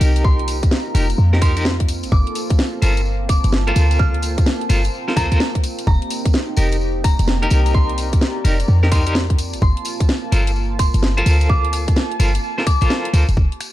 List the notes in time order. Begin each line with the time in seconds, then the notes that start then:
Already playing: A#3 C4 D#4 G4 A#4 A#5
0.01 C2, open hi-hat, tambourine
0.16 closed hi-hat, tambourine
0.24 F4 C6, kick, tambourine
0.39 closed hi-hat
0.48 open hi-hat, tambourine
0.63 kick, closed hi-hat, tambourine
0.71 snare, tambourine
0.95 F1 D#4 G4 A#4, open hi-hat, tambourine
1.10 closed hi-hat, tambourine
1.18 F2, tambourine
1.33 D#4 G4 A#4, snare
1.41 D#4 G4 A#4 C6, finger snap, kick, open hi-hat, tambourine
1.56 D#4 G4 A#4, closed hi-hat, tambourine
1.65 snare, tambourine
1.80 kick, closed hi-hat
1.88 A4, open hi-hat, tambourine
2.03 G1, closed hi-hat, tambourine
2.12 G1 D6, kick, tambourine
2.27 closed hi-hat
2.35 open hi-hat, tambourine
2.50 kick, closed hi-hat, tambourine
2.59 snare, tambourine
2.82 G1 F4 A4 A#4 C5, open hi-hat, tambourine
2.97 A5, closed hi-hat, tambourine
3.05 tambourine
3.29 F1 D6, finger snap, kick, open hi-hat, tambourine
3.44 G1, closed hi-hat, tambourine
3.52 snare, tambourine
3.67 F4 A4 A#4 C5, closed hi-hat
3.76 D2, open hi-hat, tambourine
3.91 closed hi-hat, tambourine
3.99 F6, kick, tambourine
4.14 closed hi-hat
4.22 open hi-hat, tambourine
4.38 kick, closed hi-hat, tambourine
4.46 snare, tambourine
4.61 closed hi-hat
4.69 G1 F4 A4 A#4 C5, open hi-hat, tambourine
4.84 closed hi-hat, tambourine
4.95 tambourine
5.08 F4 A4 A#4 C5, snare
5.16 D2 F4 A4 A#4 C5 A#5, finger snap, kick, open hi-hat, tambourine
5.31 D2 F4 A4 A#4 C5, closed hi-hat, tambourine
5.40 snare, tambourine
5.55 kick, closed hi-hat
5.64 open hi-hat, tambourine
5.79 closed hi-hat, tambourine
5.87 F1 D#4 G4 A#5, kick, tambourine
6.02 closed hi-hat
6.10 open hi-hat, tambourine
6.25 kick, closed hi-hat, tambourine
6.33 snare, tambourine
6.56 F1 D#4 G4 A#4, open hi-hat, tambourine
6.72 closed hi-hat, tambourine
6.81 tambourine
6.88 A#5
7.04 D#1 A#5, finger snap, kick, open hi-hat, tambourine
7.19 F1, closed hi-hat, tambourine
7.28 snare, tambourine
7.42 D#4 G4 A#4, closed hi-hat
7.50 C2, open hi-hat, tambourine
7.66 closed hi-hat, tambourine
7.74 D5 C6, kick, tambourine
7.90 closed hi-hat
7.98 open hi-hat, tambourine
8.13 kick, closed hi-hat, tambourine
8.21 snare, tambourine
8.44 F1 D#4 G4 A#4, open hi-hat, tambourine
8.60 closed hi-hat, tambourine
8.68 F2, tambourine
8.83 D#4 G4 A#4, snare
8.91 D#4 G4 A#4 C6, finger snap, kick, open hi-hat, tambourine
9.06 D#4 G4 A#4, closed hi-hat, tambourine
9.15 snare, tambourine
9.30 kick, closed hi-hat
9.39 A#3 F4 A5, open hi-hat, tambourine
9.53 G1, closed hi-hat, tambourine
9.62 G1 C6, kick, tambourine
9.77 closed hi-hat
9.85 open hi-hat, tambourine
10.00 kick, closed hi-hat, tambourine
10.09 snare, tambourine
10.32 G1 F4 A4 A#4 C5, open hi-hat, tambourine
10.47 closed hi-hat, tambourine
10.56 tambourine
10.79 F1 C6, finger snap, kick, open hi-hat, tambourine
10.94 G1, closed hi-hat, tambourine
11.03 snare, tambourine
11.17 F4 A4 A#4 C5 A5, closed hi-hat
11.26 D2, open hi-hat, tambourine
11.41 closed hi-hat, tambourine
11.49 D6, kick
11.65 closed hi-hat
11.73 finger snap, open hi-hat, tambourine
11.88 kick, closed hi-hat, tambourine
11.96 snare, tambourine
12.12 closed hi-hat
12.20 G1 F4 A4 A#4 C5, open hi-hat, tambourine
12.35 closed hi-hat, tambourine
12.44 tambourine
12.58 F4 A4 A#4 C5, snare
12.67 D6, finger snap, kick, open hi-hat, tambourine
12.81 A#1 F4 A4 A#4 C5, closed hi-hat, tambourine
12.90 snare, tambourine
13.05 closed hi-hat
13.13 D2 F4 A4 A#4 C5, open hi-hat, tambourine
13.29 F1, closed hi-hat, tambourine
13.37 F1 G4, kick, tambourine
13.52 C5, closed hi-hat
13.60 finger snap, open hi-hat, tambourine